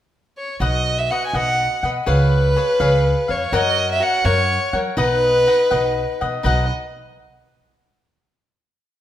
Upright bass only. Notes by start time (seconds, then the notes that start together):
0.60 B1
1.33 B1
1.83 B2
2.07 C#2
2.80 C#2
3.29 F2
3.52 F#2
4.25 F#2
4.73 F#3
4.97 B1
5.72 B1
6.22 B2
6.44 B1